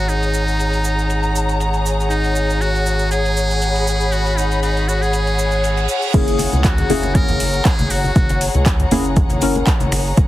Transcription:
Already playing: G#1 F#4 G#4 C#5 F#5 A#5
0.09 D#4, closed hi-hat, maracas
0.23 closed hi-hat, maracas
0.34 maracas
0.48 maracas
0.59 closed hi-hat, maracas
0.73 closed hi-hat, maracas
0.84 maracas
0.99 maracas
1.10 closed hi-hat, maracas
1.23 closed hi-hat, maracas
1.36 maracas
1.49 closed hi-hat, maracas
1.60 closed hi-hat, maracas
1.74 closed hi-hat, maracas
1.86 maracas
2.00 maracas
2.10 D#4, closed hi-hat, maracas
2.24 closed hi-hat, maracas
2.36 maracas
2.50 maracas
2.61 F#4, closed hi-hat, maracas
2.75 closed hi-hat, maracas
2.86 maracas
2.99 maracas
3.11 G#4, closed hi-hat, maracas
3.25 closed hi-hat, maracas
3.37 maracas
3.50 closed hi-hat, maracas
3.62 closed hi-hat, maracas
3.69 B5
3.75 closed hi-hat, maracas
3.87 maracas
4.00 maracas
4.12 F#4, closed hi-hat, maracas
4.26 closed hi-hat, maracas
4.38 D#4, maracas
4.51 closed hi-hat, maracas
4.63 D#4, closed hi-hat, maracas
4.76 closed hi-hat, maracas
4.88 F#4, maracas
5.02 G#4, closed hi-hat, maracas
5.13 closed hi-hat, reverse cymbal, maracas
5.27 closed hi-hat, maracas
5.39 maracas
5.51 closed hi-hat, maracas
5.64 closed hi-hat, maracas
5.77 closed hi-hat, maracas
5.89 maracas
6.02 closed hi-hat, maracas
6.14 F#1 A#3 C#4 E4 G#4, kick, closed hi-hat, crash, muted conga, high conga, maracas
6.27 closed hi-hat, maracas
6.39 open hi-hat, muted conga, maracas
6.53 C#2, closed hi-hat, high conga, maracas
6.64 F#4, kick, clap, closed hi-hat, maracas
6.78 A#5, closed hi-hat, muted conga, low conga
6.90 F#1 A#3 C#4 E4 G#4, open hi-hat, high conga, maracas
7.03 closed hi-hat, muted conga, maracas
7.15 A#3 C#4 E4 G#4 A#4, kick, closed hi-hat, low conga, maracas
7.28 F#1, closed hi-hat, high conga, low conga, maracas
7.40 open hi-hat, muted conga, maracas
7.54 closed hi-hat, maracas
7.65 G#4, kick, clap, closed hi-hat, muted conga, maracas
7.79 F#1, closed hi-hat, high conga, maracas
7.90 F#4, open hi-hat, maracas
8.04 muted conga, maracas
8.16 F#1, kick, closed hi-hat, high conga, maracas
8.29 closed hi-hat, muted conga, maracas
8.41 open hi-hat, maracas
8.54 C#2, closed hi-hat, high conga, maracas
8.66 kick, clap, closed hi-hat, muted conga, maracas
8.79 closed hi-hat, low conga
8.91 F#1 A#3 C#4 E4 G#4, open hi-hat, muted conga, high conga, maracas
9.05 closed hi-hat, maracas
9.16 kick, closed hi-hat, low conga, maracas
9.30 F#1, closed hi-hat, muted conga, high conga, low conga, maracas
9.42 A#3 C#4 E4 A#4, open hi-hat, maracas
9.55 closed hi-hat, muted conga, maracas
9.67 kick, clap, closed hi-hat, maracas
9.80 F#1, closed hi-hat, high conga, maracas
9.92 finger snap, open hi-hat, muted conga, maracas
10.06 maracas
10.17 F#1, kick, closed hi-hat, muted conga, high conga, maracas

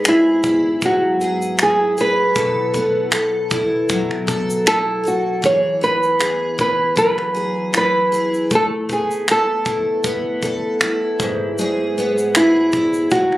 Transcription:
Already playing: G#2 B3 E4
0.05 E4 G#4, finger snap, shaker
0.43 E4, kick, shaker
0.82 F#3 F#4, kick, shaker
1.21 G#4, shaker
1.42 shaker
1.59 E4, finger snap, shaker
1.63 G#4
1.98 G#4 B4, shaker
2.35 B2 A4, kick, shaker
2.74 B3, kick, shaker
3.12 A4, finger snap, shaker
3.51 E4, kick, shaker
3.89 F#3, kick, shaker
4.11 finger snap
4.27 A4, kick, shaker
4.50 shaker
4.66 E4 A4, finger snap, shaker
5.03 A4, shaker
5.08 F#4
5.42 E3 G#4 C#5, kick, shaker
5.81 B3 B4, shaker
6.03 shaker
6.19 G#4, finger snap, shaker
6.58 E4 B4, kick, shaker
6.96 F#3 B4, kick, shaker
7.18 finger snap
7.34 G#4, shaker
7.73 E4, finger snap, shaker
7.77 B4
8.12 G#4, shaker
8.34 shaker
8.51 A3, kick, shaker
8.55 A4
8.89 B3 G#4, kick, shaker
9.11 shaker
9.28 A4, finger snap, shaker
9.65 E4, kick, shaker
10.04 B3, kick, shaker
10.42 A4, kick, shaker
10.81 E4, finger snap, shaker
11.20 G#2, kick, shaker
11.58 G#2 G#4, shaker
11.98 B3, shaker
12.18 shaker
12.35 E4 G#4, finger snap, shaker
12.72 E4, kick, shaker
12.93 shaker
13.11 F#3 F#4, kick, shaker
13.32 finger snap

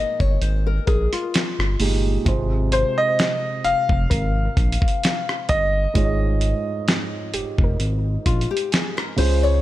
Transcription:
Already playing: A#2 G#3 D#4 A#4 D#5
0.20 G1 C#5, kick
0.42 G#1 C5, closed hi-hat
0.67 A#4
0.87 A#1 G#4 A#4, kick, closed hi-hat
1.13 F4, closed hi-hat
1.34 snare, closed hi-hat
1.59 G1, cross-stick
1.79 G1 A#2 G#3 D#4 G4, open hi-hat
2.25 G#1 C3 G#3 F4 C5, kick, closed hi-hat
2.72 C5, closed hi-hat
2.98 D#5
3.19 snare, closed hi-hat
3.64 F1 F5, closed hi-hat
3.89 F1, kick
4.10 G#1 A#4, kick, closed hi-hat
4.57 A#1, kick, closed hi-hat
4.72 closed hi-hat
4.82 kick
4.88 closed hi-hat
5.03 snare, closed hi-hat
5.29 cross-stick
5.49 G1 D#5, kick, closed hi-hat
5.94 G#1 G#2 G#3 F4 C#5, kick, closed hi-hat
6.04 D#5
6.41 closed hi-hat
6.88 snare, closed hi-hat
7.34 F1 G4, closed hi-hat
7.58 F1, kick
7.64 A#4
7.80 G#1, closed hi-hat
8.26 A#1 F4, kick, closed hi-hat
8.41 closed hi-hat
8.51 G4
8.57 closed hi-hat
8.72 G#4, snare, closed hi-hat
8.97 A#4, cross-stick
9.16 C#2 C#3 G#3 F4 C5, open hi-hat
9.43 C#5

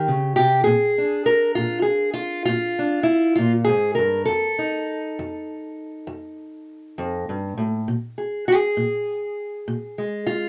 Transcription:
Already playing: G4
0.08 C#3
0.36 C3 G4
0.64 A#2 G#4
0.98 D4
1.26 A#4
1.55 A#2 F4
1.82 G#4
2.14 F4
2.45 A#2 F4
2.79 D4
3.03 E4
3.36 A#2 F4
3.65 G#4
3.69 G#2
3.95 G2 A#4
4.25 F2 A4
4.58 D#4
5.19 F2
6.07 F2
6.98 F2
7.29 G2
7.58 A2
7.88 A#2
8.18 G#4
8.48 G#4
8.77 A#2
9.68 A#2
9.98 G#3
10.26 F4

